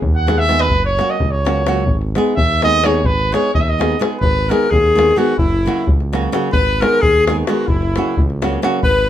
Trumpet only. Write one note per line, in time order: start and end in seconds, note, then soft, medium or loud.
0.15 0.40 F#5 medium
0.38 0.62 E5 loud
0.60 0.84 B4 loud
0.85 1.11 C#5 loud
1.10 1.32 D#5 medium
1.31 2.00 C#5 medium
2.36 2.60 E5 loud
2.64 2.87 D#5 loud
2.85 3.07 C#5 medium
3.05 3.34 B4 medium
3.33 3.54 C#5 medium
3.54 3.62 D#5 medium
3.60 3.70 E5 medium
3.69 4.00 D#5 medium
4.19 4.51 B4 medium
4.50 4.71 A#4 medium
4.70 5.18 G#4 medium
5.17 5.36 F#4 medium
5.37 5.89 E4 medium
6.52 6.83 B4 loud
6.81 7.02 A#4 medium
7.00 7.22 G#4 medium
7.23 7.33 G#4 medium
7.44 7.68 F#4 medium
7.66 8.23 E4 medium
8.82 9.09 B4 medium